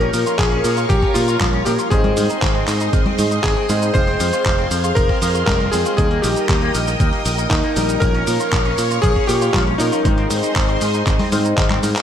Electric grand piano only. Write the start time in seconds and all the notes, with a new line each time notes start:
Already playing: A#4
0.38 G#4
0.89 G4
1.14 F4
1.65 G4
1.90 G#4
3.43 G#4
3.94 C5
4.95 A#4
5.46 A#4
5.72 G#4
5.97 G#4
6.22 G4
7.50 D#4
8.00 A#4
9.02 G#4
9.27 G4
9.53 F4
9.78 D#4